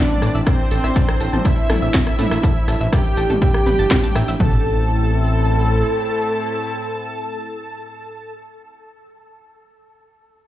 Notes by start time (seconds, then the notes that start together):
Already playing: E3 C4 D4 D5
0.10 closed hi-hat, mid tom, shaker
0.22 A2 A4 A5, cross-stick, open hi-hat, tambourine, shaker
0.35 A1 E5 E6, closed hi-hat, shaker
0.47 C4 A4 C5 A5, kick, cross-stick, tambourine, shaker
0.59 shaker
0.71 A1 A4 A5, open hi-hat, tambourine, shaker
0.84 A1 E5 E6, cross-stick, shaker
0.96 A5 A6, kick, snare, tambourine, shaker
1.08 cross-stick, shaker
1.20 A1 A4 A5, open hi-hat, tambourine, shaker
1.33 A1 A4 A5, mid tom, shaker
1.45 E4 E5 E6, kick, cross-stick, tambourine, shaker
1.58 shaker
1.70 A1 A4 A5, cross-stick, open hi-hat, mid tom, tambourine, shaker
1.82 A1 E5 E6, shaker
1.94 E5 E6, kick, snare, tambourine, shaker
2.07 cross-stick, snare, shaker
2.19 A2 A4 A5, snare, open hi-hat, mid tom, tambourine, shaker
2.31 A1 E5 E6, cross-stick, snare, tambourine, shaker
2.43 A4 A5, kick, tambourine, shaker
2.56 shaker
2.68 A1 A4 A5, cross-stick, open hi-hat, tambourine, shaker
2.81 A1 E5 E6, shaker
2.93 G4 G5 A5 A6, kick, cross-stick, snare, tambourine, shaker
3.05 shaker
3.17 A1 A4 A5, open hi-hat, tambourine, shaker
3.30 A1 A4 A5, mid tom, shaker
3.42 G4 E5 G5 E6, kick, tambourine, shaker
3.54 cross-stick, shaker
3.66 A1 B4 B5, open hi-hat, mid tom, tambourine, shaker
3.79 G1 A5 A6, shaker
3.91 kick, cross-stick, snare, tambourine, shaker
4.04 A5 A6, snare, mid tom, tambourine, shaker
4.15 A2 E5 E6, cross-stick, snare, open hi-hat, tambourine, shaker
4.28 A1 E5 E6, snare, tambourine, shaker
4.40 A1 A2 A3 C4 E4 A4 A5, kick, floor tom